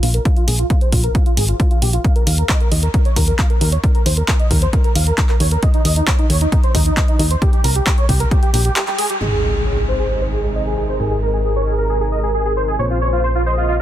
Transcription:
0.03 fm bass A#1, supersaw synth F4, open hi-hat
0.14 supersaw synth A#4, closed hi-hat
0.25 supersaw synth F4, kick, closed hi-hat
0.36 supersaw synth F4, closed hi-hat
0.47 fm bass A#1, supersaw synth G#4, open hi-hat
0.59 supersaw synth F4, closed hi-hat
0.70 supersaw synth F4, kick, closed hi-hat
0.81 supersaw synth C5, closed hi-hat
0.92 fm bass A#1, supersaw synth F4, kick, open hi-hat
1.04 supersaw synth A#4, closed hi-hat
1.15 supersaw synth F4, kick, closed hi-hat
1.26 supersaw synth F4, closed hi-hat
1.37 fm bass G#1, supersaw synth G#4, open hi-hat
1.48 supersaw synth F4, closed hi-hat
1.60 supersaw synth F4, kick, closed hi-hat
1.71 supersaw synth F4, closed hi-hat
1.82 fm bass A#1, supersaw synth G4, open hi-hat
1.93 supersaw synth F4, closed hi-hat
2.04 supersaw synth F5, kick, closed hi-hat
2.15 supersaw synth A#4, closed hi-hat
2.27 fm bass D#2, supersaw synth F5, open hi-hat
2.38 supersaw synth A#4, closed hi-hat
2.49 supersaw synth D#5, kick, clap, closed hi-hat
2.60 supersaw synth A#4, closed hi-hat
2.71 fm bass D#2, supersaw synth D#5, open hi-hat
2.83 supersaw synth A#4, closed hi-hat
2.94 supersaw synth A#4, kick, closed hi-hat
3.05 supersaw synth C#5, closed hi-hat
3.16 fm bass D#2, supersaw synth A#4, kick, open hi-hat
3.27 supersaw synth A#4
3.39 supersaw synth F5, kick, clap, closed hi-hat
3.50 supersaw synth A#4, closed hi-hat
3.61 fm bass D#2, supersaw synth A#4, open hi-hat
3.72 supersaw synth C#5, closed hi-hat
3.83 supersaw synth A#4, kick, closed hi-hat
3.95 supersaw synth A#4, closed hi-hat
4.06 fm bass D#2, supersaw synth C5, open hi-hat
4.17 supersaw synth A#4, closed hi-hat
4.28 supersaw synth A#4, kick, clap, closed hi-hat
4.39 supersaw synth D#5, closed hi-hat
4.51 fm bass D#2, supersaw synth A#4, kick, open hi-hat
4.62 supersaw synth C5, closed hi-hat
4.73 supersaw synth A#4, kick, closed hi-hat
4.84 supersaw synth A#4, closed hi-hat
4.95 fm bass D#2, supersaw synth F5, open hi-hat
5.07 supersaw synth A#4, closed hi-hat
5.18 supersaw synth A#4, kick, clap, closed hi-hat
5.29 supersaw synth A#4, clap, closed hi-hat
5.40 fm bass D#2, supersaw synth C#5, open hi-hat
5.51 supersaw synth A#4, closed hi-hat
5.63 supersaw synth D#5, kick, closed hi-hat
5.74 supersaw synth D#4, closed hi-hat
5.85 fm bass D#2, supersaw synth D#5, open hi-hat
5.96 supersaw synth D#4, closed hi-hat
6.07 supersaw synth C#5, kick, clap, closed hi-hat
6.19 supersaw synth D#4, closed hi-hat
6.30 fm bass D#2, supersaw synth C#5, open hi-hat
6.41 supersaw synth D#4, closed hi-hat
6.52 supersaw synth D#4, kick, closed hi-hat
6.63 supersaw synth C5, closed hi-hat
6.75 fm bass D#2, supersaw synth D#4, kick, open hi-hat
6.86 supersaw synth D#4, closed hi-hat
6.97 supersaw synth D#5, kick, clap, closed hi-hat
7.08 supersaw synth D#4, closed hi-hat
7.19 fm bass D#2, supersaw synth D#4, open hi-hat
7.31 supersaw synth C5, closed hi-hat
7.42 supersaw synth G4, kick, closed hi-hat
7.53 supersaw synth G4, closed hi-hat
7.64 fm bass C2, supersaw synth A#4, open hi-hat
7.75 supersaw synth G4, closed hi-hat
7.86 supersaw synth G4, kick, clap, closed hi-hat
7.98 supersaw synth C#5, closed hi-hat
8.09 fm bass C2, supersaw synth G4, kick, open hi-hat
8.20 supersaw synth A#4, closed hi-hat
8.31 supersaw synth G4, kick, closed hi-hat
8.42 supersaw synth G4, closed hi-hat
8.54 fm bass A#1, supersaw synth G4, open hi-hat
8.65 supersaw synth G4, closed hi-hat
8.76 supersaw synth G4, clap, closed hi-hat
8.87 supersaw synth G4, clap, closed hi-hat
8.98 supersaw synth G#4, open hi-hat
9.10 supersaw synth G4, closed hi-hat
9.21 fm bass G#1, supersaw synth C3 D#3 G#3 D#4 G#4 D#5, soft synth lead G#4, impact
9.32 supersaw synth G#4
9.43 supersaw synth D#5
9.55 supersaw synth G#4
9.66 supersaw synth C#5
9.77 supersaw synth G#4
9.88 soft synth lead C5, supersaw synth C5
9.99 supersaw synth G#4
10.10 supersaw synth G#4
10.22 supersaw synth C5
10.33 supersaw synth G#4
10.44 supersaw synth G#4
10.55 supersaw synth D#5
10.67 supersaw synth G#4
10.78 supersaw synth G#4
10.89 supersaw synth C5
11.00 fm bass G#1, supersaw synth G#4, soft synth lead A#4
11.11 supersaw synth G#4
11.22 supersaw synth A#4
11.33 supersaw synth G#4
11.45 supersaw synth G#4
11.56 supersaw synth C#5
11.67 supersaw synth G#4
11.78 supersaw synth A#4
11.89 supersaw synth G#4
12.01 supersaw synth G#4
12.12 supersaw synth D#5
12.23 supersaw synth G#4
12.34 supersaw synth G#4
12.45 supersaw synth G#4
12.57 supersaw synth C5
12.68 supersaw synth G#4
12.79 fm bass A#1, supersaw synth C#3 F3 A#3 C4 F4 C#5, soft synth lead C5
12.90 supersaw synth F4
13.01 supersaw synth C#5
13.13 supersaw synth F4
13.24 supersaw synth C5
13.35 supersaw synth F4
13.46 supersaw synth C5, soft synth lead D#5
13.57 supersaw synth F4
13.69 supersaw synth F4

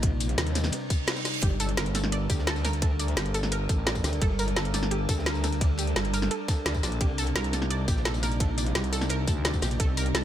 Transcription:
Already playing: wobble bass A#1, synth drone C3 G3 D4 D#4
0.02 kick, closed hi-hat, ride
0.20 closed hi-hat, ride, tambourine
0.29 closed hi-hat
0.38 wobble bass D#2, snare, closed hi-hat, ride
0.47 closed hi-hat
0.55 snare, closed hi-hat, ride, tambourine
0.64 snare, ride, tambourine
0.72 snare, closed hi-hat, ride, reverse cymbal
0.90 kick, closed hi-hat, ride, tambourine
1.07 snare, closed hi-hat, ride
1.11 snare, ride
1.16 snare, ride, tambourine
1.25 snare, closed hi-hat, ride, tambourine
1.34 closed hi-hat
1.42 wobble bass G1, synth drone G3 D4 A4 A#4, synth arpeggio sound G4, kick, closed hi-hat, ride
1.60 synth arpeggio sound A4, closed hi-hat, ride, tambourine
1.69 closed hi-hat
1.77 fm bass G1, synth arpeggio sound A#4, snare, closed hi-hat, ride
1.86 closed hi-hat
1.94 synth arpeggio sound A4, snare, closed hi-hat, ride, tambourine
2.04 snare
2.12 synth arpeggio sound D5, closed hi-hat, ride
2.29 wobble bass D2, synth arpeggio sound G4, kick, closed hi-hat, ride, tambourine
2.38 snare
2.47 synth arpeggio sound A4, snare, closed hi-hat, ride
2.56 snare, tambourine
2.65 synth arpeggio sound A#4, snare, closed hi-hat, ride, tambourine
2.73 snare, closed hi-hat
2.82 synth arpeggio sound A4, kick, closed hi-hat, ride
2.99 synth arpeggio sound D5, closed hi-hat, ride, tambourine
3.08 closed hi-hat
3.17 fm bass G1, synth arpeggio sound G4, snare, closed hi-hat, ride
3.26 closed hi-hat
3.34 synth arpeggio sound A4, closed hi-hat, ride, tambourine
3.43 snare, tambourine
3.52 synth arpeggio sound A#4, closed hi-hat, ride
3.69 fm bass A1, synth arpeggio sound A4, kick, closed hi-hat, ride, tambourine
3.86 synth arpeggio sound D5, snare, closed hi-hat, ride
3.95 kick, tambourine
4.04 wobble bass D2, synth arpeggio sound G4, snare, closed hi-hat, ride, tambourine
4.13 snare, closed hi-hat
4.22 wobble bass G1, synth arpeggio sound A4, kick, closed hi-hat, ride
4.39 synth arpeggio sound A#4, closed hi-hat, ride, tambourine
4.48 closed hi-hat
4.56 fm bass G1, synth arpeggio sound A4, snare, closed hi-hat, ride
4.65 closed hi-hat
4.74 synth arpeggio sound D5, snare, closed hi-hat, ride, tambourine
4.83 snare
4.91 synth arpeggio sound G4, closed hi-hat, ride
5.09 wobble bass D2, synth arpeggio sound A4, kick, closed hi-hat, ride, tambourine
5.18 snare
5.26 synth arpeggio sound A#4, snare, closed hi-hat, ride
5.35 snare, tambourine
5.44 synth arpeggio sound A4, snare, closed hi-hat, ride, tambourine
5.52 snare, closed hi-hat
5.61 synth arpeggio sound D5, kick, closed hi-hat, ride
5.77 synth arpeggio sound G4, closed hi-hat, ride, tambourine
5.87 closed hi-hat
5.96 wobble bass G1, synth arpeggio sound A4, snare, closed hi-hat, ride
6.05 closed hi-hat
6.13 synth arpeggio sound A#4, closed hi-hat, ride, tambourine
6.22 snare
6.31 synth arpeggio sound A4, closed hi-hat, ride
6.48 synth arpeggio sound A4, kick, snare, closed hi-hat, ride, tambourine
6.66 wobble bass D2, synth arpeggio sound D5, snare, closed hi-hat, ride
6.75 kick, tambourine
6.83 fm bass A#1, synth arpeggio sound D5, snare, closed hi-hat, ride, tambourine
6.92 closed hi-hat
7.01 wobble bass C2, synth drone C3 D#4, synth arpeggio sound G4, kick, closed hi-hat, ride
7.18 synth arpeggio sound A4, closed hi-hat, ride, tambourine
7.27 closed hi-hat
7.36 fm bass C2, synth arpeggio sound A#4, snare, closed hi-hat, ride
7.44 closed hi-hat
7.53 synth arpeggio sound A4, snare, closed hi-hat, ride, tambourine
7.62 snare
7.70 synth arpeggio sound D5, closed hi-hat, ride
7.88 wobble bass A#1, synth arpeggio sound G4, kick, closed hi-hat, ride, tambourine
7.96 snare
8.05 synth arpeggio sound A4, snare, closed hi-hat, ride
8.13 snare, tambourine
8.23 synth arpeggio sound A#4, snare, closed hi-hat, ride, tambourine
8.31 snare, closed hi-hat
8.40 synth arpeggio sound A4, kick, closed hi-hat, ride
8.58 synth arpeggio sound D5, closed hi-hat, ride, tambourine
8.66 closed hi-hat
8.75 fm bass C2, synth arpeggio sound G4, snare, closed hi-hat, ride
8.84 closed hi-hat
8.92 synth arpeggio sound A4, closed hi-hat, ride, tambourine
9.01 snare, tambourine
9.09 synth arpeggio sound A#4, closed hi-hat, ride
9.27 fm bass D2, synth arpeggio sound A4, kick, closed hi-hat, ride, tambourine
9.45 synth arpeggio sound D5, snare, closed hi-hat, ride
9.54 kick, tambourine
9.62 wobble bass A#1, synth arpeggio sound G4, snare, closed hi-hat, ride, tambourine
9.71 snare, closed hi-hat
9.80 wobble bass C2, synth arpeggio sound A4, kick, closed hi-hat, ride
9.97 synth arpeggio sound A#4, closed hi-hat, ride, tambourine
10.06 closed hi-hat
10.15 fm bass C2, synth arpeggio sound A4, snare, closed hi-hat, ride

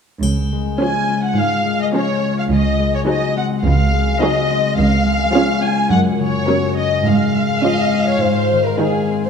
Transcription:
0.22 cello section C#2, harp C#3, triangle
0.52 harp G#3
0.80 viola section F3 C#4, harp F4, violin section G#4 C#5 G#5
1.09 harp C#4
1.25 violin section F#5
1.36 cello section G#2, harp C#3, violin section F5
1.65 harp G#3
1.81 violin section D#5
1.94 viola section F3 C#4, harp F4, violin section G#4 C#5
2.23 harp C#4
2.38 violin section F5
2.50 cello section C#2, harp C#3, violin section D#5
2.79 harp G#3
2.94 violin section C#5
3.07 viola section F#3 D#4, harp F#4, violin section G#4 C5 D#5
3.36 harp C4, violin section F#5
3.64 cello section C#2, harp C#3, violin section F5
3.93 harp G#3
4.21 viola section F#3 D#4, harp F#4, violin section G#4 C5 D#5
4.50 harp C4
4.78 cello section C#2, harp C#3, violin section F5
5.06 harp G#3
5.34 viola section F3 C#4, harp F4, violin section G#4 C#5
5.62 harp C#4, violin section G#5
5.90 cello section F#2, harp F#2, violin section F#5
6.19 harp C#3, violin section C#5
6.47 viola section F#3 C#4, harp F#4, violin section A#4 C#5
6.77 harp C#4, violin section D#5
7.05 cello section G#2, harp G#2, violin section F5
7.35 harp G#3
7.63 viola section F3 C#4, harp F4, violin section D#5
7.94 harp C#4
8.09 violin section C#5
8.21 cello section G#2, harp G#2, violin section C5
8.51 harp D#3
8.67 violin section A#4
8.80 viola section D#3 D#4, harp D#4, violin section G#4
9.10 harp C4
9.25 violin section C5

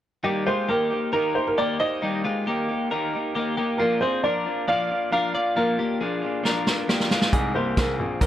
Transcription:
0.23 clean electric guitar D#3 G3 A#3 D#4 G4, upright piano G4
0.46 clean electric guitar G#3 A#3 D#4 F4 G4, upright piano C5
0.68 clean electric guitar D#3 A#3 D#4 G4, upright piano A#4
0.90 clean electric guitar A#3 D#4 G4
1.13 clean electric guitar D#3 A#3 D#4 G4 A#4, upright piano A#4
1.35 clean electric guitar A#3 D#4 G4, upright piano C5
1.47 upright piano A#4
1.58 clean electric guitar D#3 A#3 D#4 G4, upright piano D5
1.80 clean electric guitar A#3 D#4 G4 C5, upright piano D#5
2.03 clean electric guitar D#3 G3 A#3 D#4 G4
2.24 clean electric guitar G#3 A#3 D#4 F4 G4
2.46 clean electric guitar D#3 A#3 D#4 G4
2.69 clean electric guitar A#3 D#4 G4
2.91 clean electric guitar D#3 A#3 D#4 G4 A#4
3.13 clean electric guitar A#3 D#4 G4
3.35 clean electric guitar D#3 A#3 D#4 G4
3.40 clean electric guitar G4
3.58 clean electric guitar A#3 D#4 G4
3.78 clean electric guitar A#2 F3 A#3 D4, upright piano A#4
3.82 clean electric guitar F4
4.01 clean electric guitar C4 D4 F4 G#4, upright piano C5
4.05 clean electric guitar A#3
4.23 clean electric guitar F3 A#3 D4 F4 A#4, upright piano D5
4.46 clean electric guitar A#3 D4 F4
4.68 clean electric guitar A#2 F3 A#3 D4 F4 D5, upright piano F5
4.89 clean electric guitar A#3 D4 F4
5.11 clean electric guitar F3 A#3 D4 F4 A#4, upright piano F5
5.34 clean electric guitar A#3 D4 F4 D5
5.55 clean electric guitar A#2 F3 A#3 D4 F4, upright piano A#4
5.77 clean electric guitar A#3 D4 F4 G4
6.00 clean electric guitar F3 A#3 D4 F4 G#4
6.22 clean electric guitar A#3 D4 F4
6.43 clean electric guitar A#2 F3 A#3 D4 F4 A#4, snare
6.65 clean electric guitar A#3 D4 F4, snare
6.87 clean electric guitar F3 A#3 D4 F4 G4, snare
7.00 snare
7.10 clean electric guitar G#3 A#3 D4 F4, snare
7.22 snare
7.33 grand piano C2, clean electric guitar C3 D#3 G#3 A#3 C4 D#4 G#4, upright piano G#4, kick, closed hi-hat
7.55 grand piano C2, clean electric guitar C4 G4 G#4, upright piano C5
7.59 clean electric guitar A#3
7.77 grand piano C2, clean electric guitar D#3 A#3 C4 G#4, upright piano A#4, kick, snare, closed hi-hat
7.99 grand piano A#1, clean electric guitar A#3 C4 G#4
8.21 grand piano C2, clean electric guitar C3 D#3 A#3 D#4 C5, upright piano A#4, kick, closed hi-hat

